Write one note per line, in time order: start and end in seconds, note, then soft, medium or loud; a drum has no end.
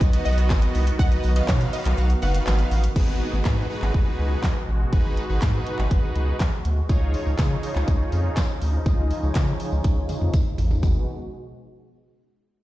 0.00 0.18 B1 loud
0.00 2.92 D#3 medium
0.00 2.92 B3 medium
0.00 2.92 F#4 loud
0.00 kick loud
0.00 tambourine medium
0.00 shaker medium
0.13 0.85 B3 medium
0.13 0.85 D#4 medium
0.13 0.85 F#4 medium
0.13 0.85 B4 medium
0.13 0.85 D#5 medium
0.13 closed hi-hat medium
0.13 shaker medium
0.25 0.52 B1 loud
0.25 0.35 D#5 medium
0.25 open hi-hat medium
0.25 tambourine medium
0.25 shaker soft
0.38 closed hi-hat medium
0.38 shaker medium
0.50 0.67 G#1 loud
0.50 kick loud
0.50 snare medium
0.50 clap loud
0.50 tambourine loud
0.50 shaker medium
0.62 closed hi-hat soft
0.62 shaker soft
0.75 0.92 C2 medium
0.75 open hi-hat medium
0.75 tambourine soft
0.75 shaker medium
0.87 closed hi-hat medium
0.87 tambourine soft
0.87 shaker medium
0.99 1.17 B1 loud
0.99 1.30 B3 medium
0.99 1.30 D#4 medium
0.99 1.30 F#4 medium
0.99 1.30 B4 medium
0.99 1.30 D#5 medium
0.99 1.09 F#5 loud
0.99 kick loud
0.99 tambourine medium
0.99 shaker medium
1.12 closed hi-hat medium
1.12 shaker medium
1.24 1.41 B1 loud
1.24 open hi-hat medium
1.24 tambourine soft
1.24 shaker medium
1.36 2.08 B3 medium
1.36 2.08 D#4 medium
1.36 2.08 F#4 medium
1.36 2.08 B4 medium
1.36 1.46 D#5 medium
1.36 2.08 F5 medium
1.36 closed hi-hat medium
1.36 tambourine soft
1.36 shaker medium
1.48 1.66 B2 loud
1.48 1.67 C#5 medium
1.48 kick loud
1.48 snare medium
1.48 clap loud
1.48 tambourine medium
1.48 shaker medium
1.61 closed hi-hat medium
1.61 tambourine soft
1.61 shaker medium
1.73 1.83 D#5 medium
1.73 open hi-hat medium
1.73 tambourine medium
1.73 shaker medium
1.85 1.94 B1 medium
1.85 clap medium
1.85 closed hi-hat medium
1.85 shaker medium
1.98 2.15 B1 loud
1.98 tambourine medium
1.98 shaker medium
2.10 closed hi-hat medium
2.10 shaker medium
2.22 2.40 F#1 loud
2.22 2.84 B3 medium
2.22 2.84 D#4 medium
2.22 2.84 F#4 medium
2.22 2.84 B4 medium
2.22 2.84 F5 medium
2.22 2.32 F#5 medium
2.22 open hi-hat medium
2.22 tambourine medium
2.22 shaker soft
2.34 closed hi-hat medium
2.34 shaker medium
2.47 2.64 G#1 loud
2.47 snare medium
2.47 clap loud
2.47 tambourine loud
2.47 shaker medium
2.59 closed hi-hat soft
2.59 shaker soft
2.71 2.89 A1 medium
2.71 open hi-hat medium
2.71 tambourine medium
2.71 shaker medium
2.83 closed hi-hat medium
2.83 tambourine soft
2.83 shaker medium
2.96 3.22 G#1 loud
2.96 6.85 B2 medium
2.96 6.85 G#3 medium
2.96 3.37 D#4 medium
2.96 6.85 F#4 loud
2.96 3.37 F#4 medium
2.96 3.37 G#4 medium
2.96 3.37 B4 loud
2.96 kick loud
2.96 crash loud
2.96 downlifter medium
3.33 3.42 G#1 medium
3.45 3.63 G#2 loud
3.45 3.66 D#4 medium
3.45 3.66 F#4 medium
3.45 3.66 G#4 medium
3.45 3.66 B4 loud
3.45 kick loud
3.45 snare medium
3.45 clap loud
3.70 4.52 D#4 medium
3.70 4.52 F#4 medium
3.70 4.52 G#4 medium
3.70 4.52 B4 loud
3.82 3.91 G#1 medium
3.82 clap medium
3.94 4.12 G#1 loud
3.94 kick loud
4.19 4.36 C#2 loud
4.43 kick loud
4.43 snare medium
4.43 clap loud
4.68 4.85 A1 medium
4.93 5.19 G#1 loud
4.93 5.23 D#4 medium
4.93 5.24 F#4 medium
4.93 5.24 G#4 medium
4.93 5.24 B4 loud
4.93 kick loud
4.93 closed hi-hat medium
5.17 closed hi-hat soft
5.29 5.38 G#1 medium
5.29 5.50 D#4 medium
5.29 5.50 F#4 medium
5.29 5.50 G#4 medium
5.29 5.50 B4 loud
5.42 5.59 G#2 loud
5.42 kick loud
5.42 snare medium
5.42 clap loud
5.42 closed hi-hat medium
5.54 6.36 D#4 medium
5.54 6.36 F#4 medium
5.54 6.37 G#4 medium
5.54 6.37 B4 loud
5.67 closed hi-hat medium
5.79 5.87 G#1 medium
5.79 clap medium
5.91 6.08 G#1 loud
5.91 kick loud
5.91 closed hi-hat medium
6.16 6.33 C#2 medium
6.16 closed hi-hat soft
6.40 kick loud
6.40 snare medium
6.40 clap loud
6.40 closed hi-hat medium
6.65 6.82 D2 medium
6.65 closed hi-hat medium
6.89 7.15 C#2 loud
6.89 10.79 C#3 medium
6.89 10.79 F3 medium
6.89 7.30 D#4 medium
6.89 10.79 D#4 loud
6.89 7.31 F4 medium
6.89 7.31 G#4 medium
6.89 7.31 C#5 loud
6.89 kick loud
6.89 closed hi-hat medium
6.89 tambourine medium
7.14 open hi-hat medium
7.14 tambourine soft
7.26 7.35 C#2 loud
7.26 tambourine soft
7.38 7.56 C#3 loud
7.38 7.59 D#4 loud
7.38 7.59 F4 medium
7.38 7.59 G#4 medium
7.38 7.59 C#5 loud
7.38 kick loud
7.38 snare medium
7.38 clap loud
7.38 closed hi-hat medium
7.38 tambourine medium
7.63 8.45 D#4 medium
7.63 8.45 F4 medium
7.63 8.45 G#4 medium
7.63 8.46 C#5 loud
7.63 open hi-hat medium
7.63 tambourine medium
7.75 7.84 C#2 medium
7.75 clap medium
7.75 tambourine soft
7.88 8.05 C#2 loud
7.88 kick loud
7.88 closed hi-hat medium
7.88 tambourine medium
8.12 8.30 F2 medium
8.12 open hi-hat medium
8.12 tambourine medium
8.37 kick loud
8.37 snare medium
8.37 clap loud
8.37 closed hi-hat medium
8.37 tambourine medium
8.62 8.79 D2 medium
8.62 open hi-hat medium
8.62 tambourine soft
8.86 9.12 C#2 loud
8.86 9.17 D#4 medium
8.86 9.17 F4 medium
8.86 9.17 G#4 medium
8.86 9.17 D#5 loud
8.86 kick loud
8.86 closed hi-hat medium
8.86 tambourine medium
9.11 open hi-hat medium
9.11 tambourine soft
9.23 9.32 C#2 loud
9.23 9.44 D#4 medium
9.23 9.44 F4 medium
9.23 9.44 G#4 medium
9.23 9.44 C#5 loud
9.23 tambourine soft
9.35 9.53 C#3 loud
9.35 kick loud
9.35 snare medium
9.35 clap loud
9.35 closed hi-hat medium
9.35 tambourine medium
9.47 10.30 D#4 medium
9.47 10.30 F4 medium
9.47 10.30 G#4 medium
9.47 10.30 C#5 medium
9.47 tambourine soft
9.60 open hi-hat medium
9.60 tambourine medium
9.72 9.81 C#2 medium
9.72 tambourine soft
9.84 10.02 C#2 loud
9.84 kick loud
9.84 closed hi-hat medium
9.84 high tom medium
9.84 tambourine medium
10.09 10.14 F2 medium
10.09 open hi-hat medium
10.09 mid tom medium
10.09 tambourine medium
10.21 10.30 F2 medium
10.21 mid tom medium
10.34 10.42 C#2 loud
10.34 kick loud
10.34 closed hi-hat medium
10.34 mid tom medium
10.34 tambourine medium
10.58 10.76 A1 loud
10.58 floor tom loud
10.58 open hi-hat medium
10.58 tambourine soft
10.70 floor tom medium
10.70 tambourine soft
10.83 11.06 G#1 loud
10.83 11.06 B2 medium
10.83 11.06 G#3 medium
10.83 11.06 D#4 medium
10.83 11.06 F#4 medium
10.83 11.06 G#4 medium
10.83 11.06 B4 loud
10.83 kick loud
10.83 floor tom loud
10.83 tambourine medium